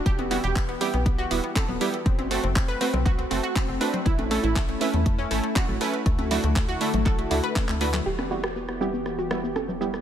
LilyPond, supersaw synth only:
\new Staff \with { instrumentName = "Supersaw synth" } { \time 4/4 \key e \minor \tempo 4 = 120 r8 <g b e' fis'>8 r8 <g b e' g'>8 r8 <g b e' fis'>8 r8 <g b e' g'>16 r16 | r8 <a c' fis' a'>8 r8 <a c' fis' b'>8 r8 <a c' fis' a'>8 r8 <a c' fis' b'>16 r16 | r8 <a cis' e' a'>8 r8 <a cis' e' b'>8 r8 <a cis' e' a'>8 r8 <a cis' e' b'>16 r16 | r8 <a d' e' fis'>8 r8 <a d' e' a'>8 r8 <a d' e' fis'>8 r8 <a d' e' fis'>8 |
r8 <g b e' fis'>8 r8 <g b e' g'>8 r8 <g b e' fis'>8 r8 <g b e' g'>16 r16 | }